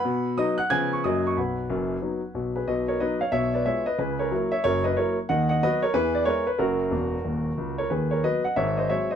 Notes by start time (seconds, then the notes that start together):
Already playing: B4 F#5 B5
0.05 B2
0.37 F#3 B3 D#4 D#5 D#6
0.58 F#5 F#6
0.70 C#3 F3 B3 C#4 G#5 G#6
0.93 C#6
1.04 F#2 F#3 A#3 C#4 D#5 D#6
1.27 C#6
1.37 B1 B2 B4 F#5 B5
1.70 F#1 F#2
2.02 F#3 B3 D#4
2.34 B1 B2
2.56 G#4 B4
2.68 B1 B2 B4 D#5
2.88 A#4 C#5
3.00 F#3 B3 D#4 B4 D#5
3.21 C#5 F5
3.32 B1 B2 C#5 E5
3.54 B4 D5
3.65 G#3 B3 F4 C#5 E5
3.86 B4 D#5
3.98 C#2 C#3 G#4 B4
4.19 A#4 C#5
4.31 F#3 A#3 E4
4.52 C#5 E5
4.64 F#1 F#2 A#4 C#5
4.84 B4 D#5
4.97 F#3 A#3 E4 A#4 C#5
5.29 D#2 D#3 D#5 F#5
5.49 D#5 F#5
5.63 F#3 B3 F#4 B4 D#5
5.82 A#4 C#5
5.94 E2 E3 G#4 B4
6.15 D5
6.25 G#3 B3 E4 A#4 C#5
6.47 B4
6.59 F#1 F#2 F#4 A#4
6.91 E1 E2
7.25 D#1 D#2
7.58 C#2
7.78 A#4 C#5
7.90 D#2 D#3 G#4 B4
8.11 A#4 C#5
8.24 F#3 B3 B4 D#5
8.45 D#5 F#5
8.56 G#1 G#2 C#5 E5
8.77 C5 D#5
8.90 F#3 G#3 C4 C#5 E5
9.11 C5 D#5